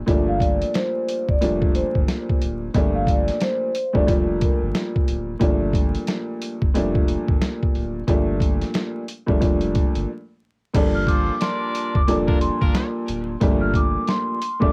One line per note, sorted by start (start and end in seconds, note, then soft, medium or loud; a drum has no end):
0.06 0.63 G1 loud
0.06 1.32 A#2 medium
0.06 1.32 F3 medium
0.06 1.32 G3 medium
0.06 1.33 A3 medium
0.06 1.33 D4 loud
0.06 kick loud
0.06 closed hi-hat medium
0.28 0.40 F5 medium
0.40 0.71 D5 medium
0.40 kick medium
0.40 closed hi-hat medium
0.61 closed hi-hat medium
0.74 1.25 C5 medium
0.74 snare loud
0.74 closed hi-hat medium
1.08 closed hi-hat medium
1.28 1.84 F1 medium
1.28 1.41 D5 medium
1.28 kick medium
1.41 2.66 A#2 loud
1.41 2.66 F3 medium
1.41 2.66 G3 medium
1.41 2.67 A3 medium
1.41 2.67 D4 loud
1.41 closed hi-hat medium
1.62 kick medium
1.75 1.93 C5 medium
1.75 closed hi-hat medium
1.95 2.06 G1 medium
1.95 kick medium
2.08 snare loud
2.08 closed hi-hat medium
2.29 kick medium
2.41 2.69 D1 loud
2.41 closed hi-hat medium
2.74 3.30 G1 loud
2.74 3.68 A#2 loud
2.74 3.68 F3 medium
2.74 3.68 G3 medium
2.74 3.69 A3 medium
2.74 3.69 D4 loud
2.74 kick loud
2.74 closed hi-hat medium
2.94 3.06 F5 medium
3.07 3.38 D5 medium
3.07 kick medium
3.07 closed hi-hat medium
3.28 snare soft
3.28 closed hi-hat medium
3.40 3.92 C5 medium
3.40 snare loud
3.40 closed hi-hat medium
3.75 closed hi-hat medium
3.93 4.50 F1 medium
3.93 4.05 A#2 medium
3.93 4.05 F3 medium
3.93 4.06 G3 medium
3.93 4.06 A3 loud
3.93 4.07 D4 loud
3.93 4.06 D5 medium
3.93 kick medium
4.06 5.32 A#2 medium
4.06 5.32 F3 medium
4.06 5.32 G3 medium
4.06 5.33 A3 medium
4.06 5.33 D4 loud
4.06 kick medium
4.06 closed hi-hat medium
4.41 4.59 A#4 medium
4.41 kick loud
4.41 closed hi-hat medium
4.61 4.72 G1 medium
4.75 snare loud
4.75 closed hi-hat medium
4.96 kick medium
5.08 5.36 D1 medium
5.08 closed hi-hat medium
5.40 5.96 G1 loud
5.40 6.65 A#2 medium
5.40 6.66 F3 medium
5.40 6.66 G3 medium
5.40 6.66 A3 medium
5.40 6.66 D4 loud
5.40 kick loud
5.40 closed hi-hat medium
5.73 kick medium
5.73 closed hi-hat medium
5.95 closed hi-hat medium
6.07 snare loud
6.07 closed hi-hat medium
6.42 closed hi-hat medium
6.62 7.17 F1 medium
6.62 kick medium
6.74 7.99 A#2 loud
6.74 7.99 F3 medium
6.74 8.00 G3 medium
6.74 8.00 A3 medium
6.74 8.00 D4 loud
6.74 closed hi-hat medium
6.95 kick medium
7.08 closed hi-hat medium
7.28 7.39 G1 medium
7.28 kick medium
7.42 snare loud
7.42 closed hi-hat medium
7.63 kick medium
7.75 8.02 D1 medium
7.75 closed hi-hat medium
8.07 8.63 G1 loud
8.07 9.01 A#2 medium
8.07 9.02 F3 medium
8.07 9.02 G3 medium
8.07 9.02 A3 medium
8.07 9.02 D4 loud
8.07 kick loud
8.07 closed hi-hat medium
8.40 kick medium
8.40 closed hi-hat medium
8.62 snare soft
8.62 closed hi-hat medium
8.74 snare loud
8.74 closed hi-hat medium
9.08 closed hi-hat medium
9.26 9.84 F1 medium
9.26 9.38 A#2 medium
9.26 9.39 F3 medium
9.26 9.39 G3 medium
9.26 9.40 A3 medium
9.26 9.40 D4 loud
9.26 kick medium
9.40 10.07 A#2 medium
9.40 10.07 F3 medium
9.40 10.08 G3 medium
9.40 10.08 A3 medium
9.40 10.08 D4 loud
9.40 kick medium
9.40 closed hi-hat medium
9.61 closed hi-hat medium
9.75 kick loud
9.75 closed hi-hat medium
9.95 10.06 G1 medium
9.95 closed hi-hat medium
10.73 11.30 G1 loud
10.73 11.99 A#2 medium
10.73 11.99 F3 medium
10.73 11.99 G3 medium
10.73 12.00 D4 loud
10.73 12.00 A4 medium
10.73 kick loud
10.73 closed hi-hat medium
10.73 crash loud
10.95 11.06 F6 medium
11.07 11.34 F4 medium
11.07 11.34 A4 medium
11.07 11.34 C5 medium
11.07 11.38 D6 medium
11.07 kick medium
11.07 closed hi-hat medium
11.41 12.04 D4 medium
11.41 12.04 A#4 loud
11.41 12.04 D5 loud
11.41 11.91 C6 medium
11.41 snare loud
11.41 closed hi-hat medium
11.75 closed hi-hat medium
11.95 12.50 F1 medium
11.95 12.07 D6 medium
11.95 kick loud
12.07 13.33 A#2 loud
12.07 13.33 F3 medium
12.07 13.33 G3 medium
12.07 13.34 D4 loud
12.07 13.33 A4 medium
12.07 closed hi-hat loud
12.27 12.38 D4 loud
12.27 12.38 F4 medium
12.27 12.38 A#4 loud
12.27 kick loud
12.41 12.59 C6 medium
12.41 closed hi-hat medium
12.61 12.73 G1 medium
12.61 12.88 D4 medium
12.61 12.88 F4 medium
12.61 12.88 A#4 loud
12.61 kick loud
12.75 snare loud
12.75 closed hi-hat medium
13.08 13.36 D1 loud
13.08 closed hi-hat medium
13.41 13.96 G1 loud
13.41 14.34 A#2 loud
13.41 14.35 F3 medium
13.41 14.35 G3 medium
13.41 14.35 A3 medium
13.41 14.36 D4 loud
13.41 kick loud
13.41 closed hi-hat medium
13.61 13.73 F6 medium
13.74 14.05 D6 medium
13.74 kick medium
13.74 closed hi-hat medium
14.07 14.59 C6 medium
14.07 snare loud
14.07 closed hi-hat medium
14.42 closed hi-hat medium
14.60 14.72 F1 medium
14.60 14.71 A#2 medium
14.60 14.72 F3 medium
14.60 14.72 G3 medium
14.60 14.72 A3 loud
14.60 14.72 D4 loud
14.60 14.72 D6 medium
14.60 kick medium